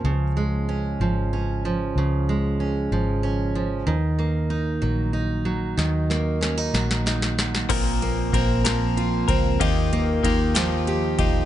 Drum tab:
CC |------------|------------|------------|------------|
RD |------------|------------|------------|------------|
SD |------------|------------|------------|o-o-o-oooooo|
BD |------------|------------|------------|------------|

CC |x-----------|------------|
RD |x-x-x-x-x-x-|x-x-x-x-x-x-|
SD |------o-----|------o-----|
BD |o---o-----o-|o---o-----o-|